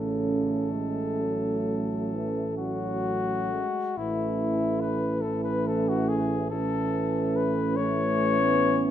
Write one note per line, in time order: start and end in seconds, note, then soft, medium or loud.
0.00 3.64 A1 soft
0.00 0.74 C#3 soft
0.00 3.60 A3 soft
0.00 3.60 C#4 soft
0.00 2.54 A4 soft
0.73 1.23 G#3 soft
1.21 2.16 F#3 soft
2.14 2.45 E3 soft
2.58 3.54 F#3 soft
2.58 3.99 F#4 medium
3.52 3.97 G#3 soft
3.97 8.91 A1 soft
3.97 5.21 E3 soft
3.97 5.20 A3 soft
3.97 5.21 C#4 soft
3.97 4.82 E4 medium
4.81 5.23 B4 medium
5.21 6.50 E3 medium
5.21 6.50 A3 soft
5.21 5.43 A4 medium
5.27 6.51 C#4 medium
5.44 5.68 B4 medium
5.67 5.90 A4 medium
5.89 6.10 F#4 medium
6.09 6.50 G#4 medium
6.50 7.77 E3 medium
6.50 7.76 A3 medium
6.50 7.77 C#4 medium
6.50 7.38 A4 medium
7.36 7.78 B4 medium
7.76 8.91 E3 medium
7.76 8.39 A3 soft
7.76 8.91 C#4 medium
7.76 8.82 C#5 medium
8.40 8.91 B3 medium